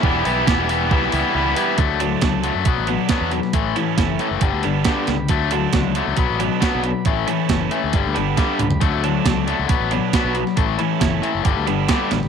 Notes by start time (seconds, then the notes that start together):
Already playing: E5 B5
0.02 E1 E3 G3 B3 E4 G4 B4, kick
0.24 B1 E3 G3 B3 E4, open hi-hat
0.47 E1 E3 G3 B3 E4, kick, snare
0.69 E3 G3 B3 E4, open hi-hat
0.91 C#2 E3 G3 B3 E4, kick
1.03 B1
1.12 C#2 E3 G3 B3 E4, open hi-hat
1.34 C#2 E3 G3 B3 E4
1.56 E3 G3 B3 E4, open hi-hat
1.78 D2 D3 F#3 A3 F#4 A4 D5 A5, kick, closed hi-hat
2.00 D3 F#3 A3 D4, closed hi-hat
2.21 C#2 D3 F#3 A3 D4, kick, snare, closed hi-hat
2.44 D3 F#3 A3, closed hi-hat
2.55 F#2
2.65 B1 B2 F#3 B3 F#4 B4 D5 B5, kick, closed hi-hat
2.78 A1
2.87 B2 F#3 B3 D4, closed hi-hat
3.09 B2 F#3 B3 D4, kick, snare, closed hi-hat
3.21 E2
3.31 B2 F#3, closed hi-hat
3.43 snare
3.53 A1 A2 E3 A3 E4 A4 C#5 A5, kick, closed hi-hat
3.76 A2 E3 A3 C#4 E4, closed hi-hat
3.98 F#1 A2 E3 A3 C#4 E4, kick, snare, closed hi-hat
4.19 A2 E3 A3, closed hi-hat
4.31 F#1
4.41 G1 G2 D3 G3 G4 B4 D5 B5, kick, closed hi-hat
4.53 D2
4.63 G1 G2 D3 G3 B3 D4, closed hi-hat
4.84 G2 D3 G3 B3 D4, kick, snare, closed hi-hat
5.07 C#2 G2 D3, snare, closed hi-hat
5.29 D2 D3 F#3 A3 F#4 A4 D5 A5, kick, closed hi-hat
5.51 D3 F#3 A3 D4, closed hi-hat
5.73 C#2 D3 F#3 A3 D4, kick, snare, closed hi-hat
5.95 D3 F#3 A3, closed hi-hat
6.08 C#2
6.17 B1 B2 F#3 B3 B4 B5, kick, closed hi-hat
6.30 A1
6.40 B2 F#3 B3 D4, closed hi-hat
6.61 B2 F#3 B3 D4, kick, snare, closed hi-hat
6.75 B1
6.84 B2 F#3, closed hi-hat
7.05 A1 A2 E3 A3 E4 A4 C#5 A5, kick, closed hi-hat
7.27 A2 E3 A3 C#4 E4, closed hi-hat
7.49 F#1 A2 E3 A3 C#4 E4, kick, snare, closed hi-hat
7.71 A2 E3 A3, closed hi-hat
7.84 D2
7.93 G1 G2 D3 G3 G4 B4 D5 B5, kick, closed hi-hat
8.06 D2
8.15 G1 G2 D3 G3 B3 D4, closed hi-hat
8.37 G2 D3 G3 B3 D4, kick, snare, closed hi-hat
8.59 C#2 G2 D3, closed hi-hat, mid tom
8.70 floor tom
8.81 D2 D3 F#3 A3 F#4 A4 A5, kick, closed hi-hat
9.03 D3 F#3 A3 D4, closed hi-hat
9.25 C#2 D3 F#3 A3 D4, kick, snare, closed hi-hat
9.47 D3 F#3 A3, closed hi-hat
9.59 C#2
9.69 B1 B2 F#3 B3 B4 B5, kick, closed hi-hat
9.80 A1
9.91 B2 F#3 B3 D4, closed hi-hat
10.13 B2 F#3 B3 D4, kick, snare, closed hi-hat
10.25 B1
10.35 B2 F#3, closed hi-hat
10.47 snare
10.56 A1 A2 E3 A3 E4 A4 C#5 A5, kick, closed hi-hat
10.79 A2 E3 A3 C#4 E4, closed hi-hat
11.00 F#1 A2 E3 A3 C#4 E4, kick, snare, closed hi-hat
11.22 A2 E3 A3, closed hi-hat
11.35 F#1
11.43 G1 G2 D3 G3 G4 B4 D5 B5, kick, closed hi-hat
11.57 D2
11.66 G1 G2 D3 G3 B3 D4, closed hi-hat
11.89 G2 D3 G3 B3 D4, kick, snare, closed hi-hat
12.11 A1 G2 D3, snare, closed hi-hat
12.23 snare